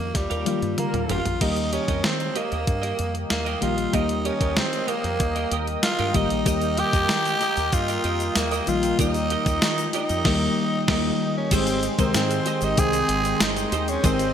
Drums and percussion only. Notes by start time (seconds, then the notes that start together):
0.15 kick, snare, closed hi-hat
0.31 closed hi-hat
0.46 closed hi-hat, high tom
0.62 closed hi-hat
0.78 closed hi-hat, mid tom
0.94 closed hi-hat, mid tom
1.09 closed hi-hat, floor tom
1.25 closed hi-hat, floor tom
1.41 kick, closed hi-hat, crash
1.56 closed hi-hat
1.73 closed hi-hat
1.88 kick, closed hi-hat
2.04 snare, closed hi-hat
2.20 closed hi-hat
2.36 closed hi-hat
2.52 closed hi-hat
2.67 kick, closed hi-hat
2.83 closed hi-hat
2.99 closed hi-hat
3.15 closed hi-hat
3.30 snare, closed hi-hat
3.46 closed hi-hat
3.62 closed hi-hat
3.78 closed hi-hat
3.94 kick, closed hi-hat
4.09 closed hi-hat
4.25 closed hi-hat
4.41 kick, closed hi-hat
4.57 snare, closed hi-hat
4.73 closed hi-hat
4.88 closed hi-hat
5.04 closed hi-hat
5.20 kick, closed hi-hat
5.36 closed hi-hat
5.51 closed hi-hat
5.67 closed hi-hat
5.83 snare, closed hi-hat
5.99 closed hi-hat
6.14 kick, closed hi-hat
6.30 closed hi-hat
6.46 kick, closed hi-hat, shaker
6.61 closed hi-hat, shaker
6.77 closed hi-hat
6.93 kick, closed hi-hat, shaker
7.09 snare, closed hi-hat, shaker
7.25 closed hi-hat, shaker
7.41 closed hi-hat, shaker
7.57 closed hi-hat, shaker
7.72 kick, closed hi-hat, shaker
7.88 closed hi-hat, shaker
8.04 closed hi-hat
8.20 closed hi-hat, shaker
8.35 snare, closed hi-hat, shaker
8.51 closed hi-hat, shaker
8.67 closed hi-hat, shaker
8.83 closed hi-hat, shaker
8.99 kick, closed hi-hat, shaker
9.14 closed hi-hat, shaker
9.30 closed hi-hat
9.46 kick, closed hi-hat, shaker
9.62 snare, closed hi-hat, shaker
9.78 closed hi-hat, shaker
9.93 closed hi-hat, shaker
10.09 closed hi-hat, shaker
10.25 kick, snare, crash
10.88 kick, snare, crash
11.51 kick, closed hi-hat, crash, shaker
11.67 closed hi-hat, shaker
11.83 closed hi-hat, shaker
11.99 kick, closed hi-hat, shaker
12.14 snare, closed hi-hat, shaker
12.31 closed hi-hat, shaker
12.46 closed hi-hat, shaker
12.61 closed hi-hat, shaker
12.77 kick, closed hi-hat, shaker
12.93 closed hi-hat, shaker
13.09 closed hi-hat
13.25 closed hi-hat, shaker
13.40 snare, closed hi-hat, shaker
13.56 closed hi-hat, shaker
13.72 closed hi-hat, shaker
13.88 closed hi-hat, shaker
14.04 kick, closed hi-hat, shaker
14.19 closed hi-hat, shaker